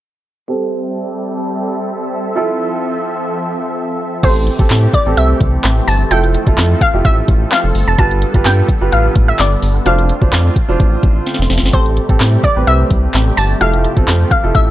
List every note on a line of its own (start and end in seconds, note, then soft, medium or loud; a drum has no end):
0.48 2.34 G3 medium
0.48 2.32 C4 medium
0.48 4.20 C4 medium
0.48 2.32 G4 medium
0.48 4.20 A4 medium
0.48 2.33 A4 medium
0.48 4.20 E5 medium
2.35 4.21 F3 medium
2.35 4.19 E4 medium
2.35 4.20 F4 medium
2.35 4.20 A4 medium
4.23 4.49 A1 loud
4.23 6.09 E3 medium
4.23 7.95 A3 medium
4.23 4.48 C4 medium
4.23 7.95 C4 medium
4.23 4.48 G4 medium
4.23 6.09 G4 medium
4.23 4.48 A4 medium
4.23 4.96 C5 loud
4.23 kick loud
4.23 closed hi-hat medium
4.23 crash medium
4.36 closed hi-hat soft
4.47 closed hi-hat medium
4.59 4.67 A1 medium
4.59 4.92 C4 medium
4.59 4.92 G4 medium
4.59 4.92 A4 medium
4.59 kick loud
4.59 closed hi-hat medium
4.70 4.87 A2 loud
4.70 snare loud
4.70 clap loud
4.70 closed hi-hat medium
4.93 5.18 D5 medium
4.93 kick medium
4.93 closed hi-hat medium
5.06 5.14 A1 medium
5.06 5.72 C4 medium
5.06 5.72 G4 medium
5.06 5.72 A4 medium
5.17 5.34 C2 medium
5.17 5.90 E5 loud
5.17 closed hi-hat medium
5.41 5.58 C2 loud
5.41 kick loud
5.41 closed hi-hat medium
5.64 5.81 A1 medium
5.64 snare medium
5.64 clap loud
5.64 closed hi-hat medium
5.87 6.04 G1 medium
5.87 6.09 A5 loud
5.87 open hi-hat medium
6.11 6.37 F1 loud
6.11 7.97 F3 medium
6.11 6.36 E4 medium
6.11 6.36 F4 medium
6.11 9.82 A4 medium
6.11 6.36 A4 medium
6.11 6.83 G5 loud
6.11 closed hi-hat medium
6.24 closed hi-hat soft
6.34 closed hi-hat medium
6.47 6.55 G1 loud
6.47 6.79 E4 medium
6.47 6.80 F4 medium
6.47 6.80 A4 medium
6.47 kick loud
6.47 closed hi-hat medium
6.58 6.75 F2 loud
6.58 snare loud
6.58 clap loud
6.58 closed hi-hat medium
6.81 7.05 F5 loud
6.81 kick medium
6.81 closed hi-hat medium
6.94 7.02 F1 medium
6.94 7.60 E4 medium
6.94 7.60 F4 medium
6.94 7.60 G4 medium
7.05 7.22 A1 medium
7.05 7.48 E5 loud
7.05 kick medium
7.05 closed hi-hat medium
7.28 7.45 A1 loud
7.28 kick loud
7.28 closed hi-hat medium
7.51 7.89 F5 loud
7.51 snare medium
7.51 clap loud
7.51 closed hi-hat medium
7.64 7.72 F1 medium
7.75 7.84 G1 medium
7.75 open hi-hat medium
7.87 7.95 F1 medium
7.87 7.93 A5 medium
7.98 8.24 G1 loud
7.98 11.70 D3 medium
7.98 9.84 G3 medium
7.98 9.84 B3 medium
7.98 8.23 F4 medium
7.98 8.23 G4 medium
7.98 8.24 B4 medium
7.98 8.47 A5 loud
7.98 kick loud
7.98 closed hi-hat medium
8.11 closed hi-hat soft
8.22 closed hi-hat medium
8.34 8.42 G1 medium
8.34 8.67 F4 medium
8.34 8.67 G4 medium
8.34 8.67 B4 medium
8.34 kick loud
8.34 closed hi-hat medium
8.45 8.62 G2 loud
8.45 8.94 G5 loud
8.45 snare medium
8.45 clap loud
8.45 closed hi-hat medium
8.69 kick medium
8.69 closed hi-hat medium
8.81 8.89 G1 medium
8.81 9.47 F4 medium
8.81 9.47 G4 medium
8.81 9.47 B4 medium
8.92 9.09 A1 medium
8.92 9.26 F5 loud
8.92 closed hi-hat medium
9.16 9.33 A1 loud
9.16 kick loud
9.16 closed hi-hat medium
9.28 9.40 E5 medium
9.39 9.56 G1 medium
9.39 9.83 D5 medium
9.39 snare medium
9.39 clap loud
9.39 closed hi-hat medium
9.62 9.80 G1 medium
9.62 open hi-hat medium
9.86 10.12 F1 loud
9.86 14.71 A3 medium
9.86 11.72 C4 medium
9.86 10.11 D4 medium
9.86 10.11 F4 medium
9.86 11.72 F4 medium
9.86 10.11 C5 medium
9.86 10.52 F5 medium
9.86 closed hi-hat medium
9.98 closed hi-hat soft
10.09 closed hi-hat medium
10.21 10.30 G1 medium
10.21 10.54 D4 medium
10.21 10.54 F4 medium
10.21 10.55 C5 medium
10.21 kick loud
10.33 10.50 F2 loud
10.33 snare loud
10.33 clap loud
10.33 closed hi-hat medium
10.56 kick medium
10.56 closed hi-hat medium
10.68 10.77 F1 medium
10.68 11.35 D4 medium
10.68 11.35 F4 medium
10.68 11.35 C5 medium
10.80 10.97 A1 loud
10.80 kick medium
10.80 closed hi-hat medium
11.03 11.20 A1 medium
11.03 kick loud
11.03 closed hi-hat medium
11.26 snare medium
11.26 closed hi-hat medium
11.34 snare medium
11.39 11.47 F1 medium
11.39 snare medium
11.50 11.59 F1 medium
11.50 snare medium
11.50 open hi-hat medium
11.58 snare loud
11.62 11.70 G1 medium
11.62 snare medium
11.73 11.99 A1 loud
11.73 14.71 C3 medium
11.73 13.59 G3 medium
11.73 11.98 C4 medium
11.73 11.98 G4 medium
11.73 14.71 G4 medium
11.73 11.98 A4 medium
11.73 12.46 C5 loud
11.73 kick loud
11.73 closed hi-hat medium
11.86 closed hi-hat soft
11.97 closed hi-hat medium
12.09 12.17 A1 medium
12.09 12.42 C4 medium
12.09 12.42 G4 medium
12.09 12.42 A4 medium
12.09 kick loud
12.09 closed hi-hat medium
12.20 12.37 A2 loud
12.20 snare loud
12.20 clap loud
12.20 closed hi-hat medium
12.44 12.54 D5 medium
12.44 kick medium
12.44 closed hi-hat medium
12.56 12.64 A1 medium
12.56 13.22 C4 medium
12.56 13.22 G4 medium
12.56 13.22 B4 medium
12.67 12.84 C2 medium
12.67 13.40 E5 loud
12.67 closed hi-hat medium
12.91 13.08 C2 medium
12.91 kick loud
12.91 closed hi-hat medium
13.14 13.31 A1 medium
13.14 snare medium
13.14 clap loud
13.14 closed hi-hat medium
13.37 13.55 G1 medium
13.37 13.48 A5 loud
13.37 open hi-hat medium
13.61 13.87 F1 loud
13.61 14.71 F3 medium
13.61 13.86 E4 medium
13.61 13.86 F4 medium
13.61 13.86 A4 medium
13.61 14.27 F5 loud
13.61 closed hi-hat medium
13.73 closed hi-hat soft
13.84 closed hi-hat medium
13.96 14.05 G1 loud
13.96 14.29 C4 medium
13.96 14.29 F4 medium
13.96 14.29 A4 medium
13.96 kick loud
13.96 closed hi-hat medium
14.08 14.25 F2 loud
14.08 snare loud
14.08 clap loud
14.08 closed hi-hat medium
14.31 14.55 F5 medium
14.31 kick medium
14.31 closed hi-hat medium
14.43 14.52 F1 medium
14.43 14.71 E4 medium
14.43 14.71 F4 medium
14.43 14.71 A4 medium
14.55 14.71 A1 medium
14.55 14.71 E5 loud
14.55 kick medium
14.55 closed hi-hat medium